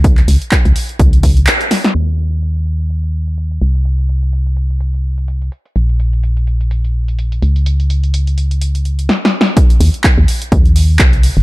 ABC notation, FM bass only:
X:1
M:4/4
L:1/16
Q:"Swing 16ths" 1/4=126
K:Cphr
V:1 name="FM bass" clef=bass
D,,2 D,, z2 D,, z2 D,,4 z4 | E,,12- E,,2 C,,2- | C,,12- C,,2 z2 | B,,,12- B,,,2 D,,2- |
D,,12 z4 | z2 E,, z2 E,, z2 E,,4 C,,3 G,,, |]